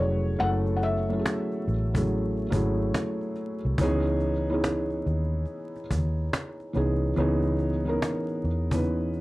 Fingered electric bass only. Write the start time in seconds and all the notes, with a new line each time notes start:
0.00 F1
0.41 F#1
1.67 A1
2.53 G#1
3.65 C2
3.79 C#2
5.06 D#2
5.91 D#2
6.76 C2
7.18 C#2
8.44 E2